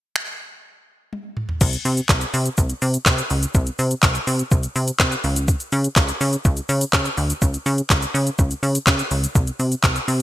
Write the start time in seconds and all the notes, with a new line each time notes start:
0.16 finger snap
1.13 high tom
1.37 mid tom
1.49 floor tom
1.61 C2, kick, crash, shaker
1.73 closed hi-hat, shaker
1.85 C3, open hi-hat, shaker
1.97 closed hi-hat, shaker
2.09 C2, kick, snare, clap, shaker
2.21 closed hi-hat, shaker
2.34 C3, open hi-hat, shaker
2.46 closed hi-hat, shaker
2.57 C2, kick, shaker
2.70 closed hi-hat, shaker
2.82 C3, open hi-hat, shaker
2.94 closed hi-hat, shaker
3.06 C3, kick, snare, clap, shaker
3.18 closed hi-hat, shaker
3.30 C#2, open hi-hat, shaker
3.43 closed hi-hat, shaker
3.54 C2, kick, shaker
3.67 closed hi-hat, shaker
3.79 C3, open hi-hat, shaker
3.91 closed hi-hat, shaker
4.03 C2, kick, snare, clap, shaker
4.15 closed hi-hat, shaker
4.27 C3, open hi-hat, shaker
4.39 closed hi-hat, shaker
4.51 C2, kick, shaker
4.63 closed hi-hat, shaker
4.76 C3, open hi-hat, shaker
4.88 closed hi-hat, shaker
5.00 C3, kick, snare, clap, shaker
5.12 closed hi-hat, shaker
5.24 C#2, open hi-hat, shaker
5.36 closed hi-hat, shaker
5.48 kick, shaker
5.60 closed hi-hat, shaker
5.72 C#3, open hi-hat, shaker
5.84 closed hi-hat, shaker
5.96 C#2, kick, snare, clap, shaker
6.09 closed hi-hat, shaker
6.21 C#3, open hi-hat, shaker
6.33 closed hi-hat, shaker
6.45 C#2, kick, shaker
6.57 closed hi-hat, shaker
6.69 C#3, open hi-hat, shaker
6.81 closed hi-hat, shaker
6.93 C#3, kick, snare, clap, shaker
7.05 closed hi-hat, shaker
7.17 D2, open hi-hat, shaker
7.30 closed hi-hat, shaker
7.42 C#2, kick, shaker
7.54 closed hi-hat, shaker
7.66 C#3, open hi-hat, shaker
7.78 closed hi-hat, shaker
7.90 C#2, kick, snare, clap, shaker
8.02 closed hi-hat, shaker
8.14 C#3, open hi-hat, shaker
8.27 closed hi-hat, shaker
8.39 C#2, kick, shaker
8.51 closed hi-hat, shaker
8.63 C#3, open hi-hat, shaker
8.75 closed hi-hat, shaker
8.87 C#3, kick, snare, clap, shaker
8.99 closed hi-hat, shaker
9.11 C#2, open hi-hat, shaker
9.24 closed hi-hat, shaker
9.35 C2, kick, shaker
9.47 closed hi-hat, shaker
9.59 C3, open hi-hat, shaker
9.72 closed hi-hat, shaker
9.84 C2, kick, snare, clap, shaker
9.96 closed hi-hat, shaker
10.08 C3, open hi-hat, shaker